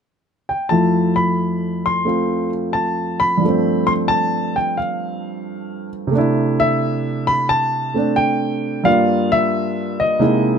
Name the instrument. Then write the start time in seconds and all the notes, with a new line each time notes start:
upright piano
0.49 G5
0.69 F2 F3 A3 E4 A5
1.16 B5
1.86 C6
2.05 A3 C4 F4
2.73 A5
3.20 B5
3.37 G2 F3
3.45 A3 C4
3.87 C6
4.08 A5
4.56 G5
4.77 F5
6.07 C3 A3
6.15 D4 E4
6.60 E5
7.27 B5
7.49 A5
7.94 A3 C4 D4
8.16 G5
8.84 G2 G3 A#3 F4 F5
9.32 E5
10.00 D#5
10.19 C3 G#3 A#3 D#4 E4